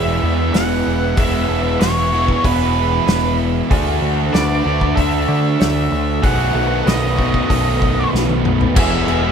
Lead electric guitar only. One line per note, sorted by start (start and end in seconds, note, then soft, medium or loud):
0.00 0.56 E5 medium
0.53 1.19 F#5 medium
1.17 1.80 E5 loud
1.81 2.46 C#5 medium
2.45 3.35 B4 medium
4.34 4.95 D5 medium
4.95 6.26 E5 medium
6.24 6.89 F#5 loud
6.88 8.10 D#5 medium
8.77 9.32 E5 loud